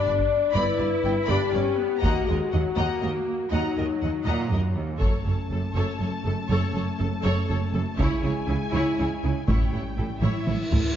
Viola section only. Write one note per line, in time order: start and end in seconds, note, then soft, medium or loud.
0.00 0.53 D4 medium
0.56 1.28 E4 medium
1.31 1.55 D4 medium
1.54 1.79 C#4 medium
1.79 2.04 B3 medium
2.03 2.28 A#3 medium
2.27 2.53 G#3 medium
2.53 2.78 F#3 soft
2.78 3.52 A#3 soft
3.53 4.62 F#3 soft
5.00 5.24 A4 soft
5.26 5.34 A4 soft
5.52 5.60 A4 soft
5.75 5.99 A4 soft
6.00 6.08 A4 soft
6.25 6.33 A4 soft
6.51 6.73 A4 soft
6.74 6.82 A4 soft
6.99 7.07 A4 soft
7.24 7.47 A4 medium
7.49 7.57 A4 soft
7.75 7.83 A4 soft
7.99 8.21 E4 medium
8.22 8.30 E4 soft
8.48 8.56 E4 soft
8.73 8.96 E4 medium
8.98 9.06 E4 soft
9.23 9.31 E4 soft
9.48 9.71 E4 soft
9.72 9.80 E4 soft
9.98 10.06 E4 soft
10.22 10.45 E4 soft
10.47 10.55 E4 soft
10.71 10.79 E4 soft